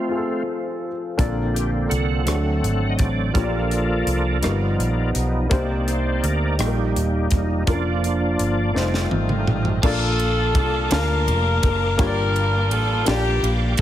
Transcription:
Already playing: F3 A3 C4 F4 A4 C5
0.09 C4 F4 G#4
0.17 A4
1.18 A#1 A#2 D3 A#3 C4 D4 F4 A4 D5, kick, closed hi-hat
1.54 G4, closed hi-hat
1.89 C2 C4 A4 F#5, closed hi-hat
2.24 D2 D3 F#3 A3 C4 D4 F#4 A4, cross-stick, closed hi-hat
2.29 D5
2.63 G#1, closed hi-hat
2.89 D#5
2.98 A1 D5, kick, closed hi-hat
3.32 A#1 A#2 F3 G3 A#3 D4 F4 G4 A4 A#4 D5, kick, closed hi-hat
3.37 C#5
3.43 D5
3.71 closed hi-hat
4.06 C2, closed hi-hat
4.42 G1 G2 F3 G3 A#3 B3 D#4 F4 A#4, cross-stick, closed hi-hat
4.49 B3
4.79 A#1, closed hi-hat
5.15 B1, closed hi-hat
5.49 C2 C3 A#3 C4 D4 D#4 G4 C5 D5, kick, closed hi-hat
5.57 D#4
5.88 C5, closed hi-hat
6.23 D2 A#4, closed hi-hat
6.58 A#1 A#2 G3 A#3 D#4 G4 A4, cross-stick, closed hi-hat
6.67 A#4
6.95 D#1, closed hi-hat
7.31 E1, kick, closed hi-hat
7.67 F1 D3 F3 A#3 C#4 D4 F4 A#4 D5, kick, closed hi-hat
7.73 D4
8.04 closed hi-hat
8.39 G1, closed hi-hat
8.74 F1 D#3 G3 A3 C4 D#4 F4 C5, snare
8.94 snare
9.11 G#1, high tom
9.29 mid tom
9.47 A1, mid tom
9.65 floor tom
9.82 A#1 A#2 A#3 D4 F4 A4 D5 F5 A5 D6, kick, crash
10.19 ride
10.55 C2, kick, ride
10.90 D2 A#3 D4 F4 A#4 F5 A5, snare, ride
11.27 F1, ride
11.63 F#1, kick, ride
11.98 G1 G2 A#3 D4 F4 G4 A#4 C#5 G5, kick, ride
12.07 D5
12.36 ride
12.71 A1 A4, ride
13.05 A#1 A#3 D4 F4 G4 D5, snare, ride
13.43 A#1, ride
13.77 ride

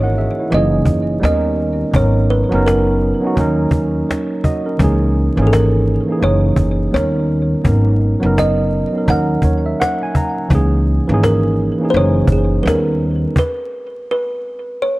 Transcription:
Already playing: G#1 E3 A#3 C#4 D#4 E4 F#4 G#4 C#5 D#5
0.04 A#4 F#5
0.14 E5, cajon slap
0.19 G#4
0.39 E4 C#5
0.50 F#1 E3 A#3 C#4, cajon slap
0.54 D#4 G#4 D#5
0.85 F#1, cajon bass
1.20 D#2 G3 B3 C#4
1.25 D#4 A#4 D#5, cajon slap
1.60 cajon slap
1.91 G#1 F#3 B3 C#4, cajon bass
1.96 D#4 A#4 C#5
2.18 cajon slap
2.30 B4, cajon slap
2.49 F#1 F#3 B3 C#4
2.54 D#4 A#4
2.66 A#4, cajon slap
3.00 cajon slap
3.20 F#3 B3 C#4
3.25 D#4 F#4
3.34 D#2 F#3 A#3 C#4, cajon bass
3.39 D#4 A#4
3.71 D#2, cajon bass
4.09 C#5, cajon slap
4.44 F#4 D#5, cajon bass
4.66 C#4 A#4
4.78 C#2 E3 A#3 C#4, cajon bass
4.82 D#4 G#4
5.16 cajon slap
5.36 G#1 E3 A#3 C#4
5.40 D#4 G#4
5.47 A4
5.53 A#4, cajon slap
5.85 cajon slap
6.06 E3 A#3 C#4
6.11 D#4 G#4
6.18 E3 A#3 C#4, cajon slap
6.22 F#1 D#4 G#4 C#5
6.56 F#1, cajon bass
6.91 D#2 G3 B3 C#4 C#5
6.96 D#4 A#4, cajon slap
7.31 cajon slap
7.62 G#1 F#3 B3 C#4, cajon bass
7.67 D#4 A#4
8.01 cajon slap
8.20 F#1 F#3 B3 C#4
8.25 D#4 A#4
8.38 D#5, cajon slap
8.70 cajon slap
8.92 F#3 B3 C#4
8.96 D#4 A#4
9.06 D#2 F#3 A#3 C#4, cajon bass
9.10 D#4 A#4 F#5
9.42 D#2 C#5, cajon bass
9.66 E5
9.80 F#5, cajon slap
10.03 G#5
10.15 A#5, cajon bass
10.49 C#2 E3 A#3 C#4, cajon bass
10.53 D#4 G#4
10.86 cajon slap
11.07 G#1 E3 A#3 C#4
11.12 D#4 G#4
11.23 A#4, cajon slap
11.56 cajon slap
11.79 E3 A#3 C#4
11.83 D#4 G#4
11.90 F#1 E3 A#3 C#4 C5, cajon slap
11.96 D#4 G#4 C#5
12.28 F#1, cajon bass
12.32 G#4
12.63 D#2 G3 B3 C#4 B4
12.67 D#4 A#4, cajon slap
13.02 cajon slap
13.36 B4, cajon bass, cajon slap
14.11 B4
14.82 C#5

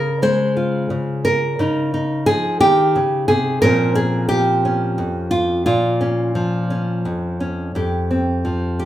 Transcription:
Already playing: C#3 G#4 A#4
0.22 G#3 C5
0.57 F4
0.90 C#3
1.25 A#4
1.59 C#3 D#4
1.94 D#4
2.26 F3 G#4
2.61 D#3 G4
2.96 C#3
3.28 C3 G#4
3.62 A#2 F3 C4 C#4 A#4
3.95 G#4
4.29 F3 G4
4.65 C#4
4.98 F2
5.31 F4
5.66 A#2 F4
6.01 C#4
6.35 F3
6.70 C#4
7.05 F2
7.40 C#4
7.75 F2 G4
8.11 C4
8.45 F3
8.79 G4

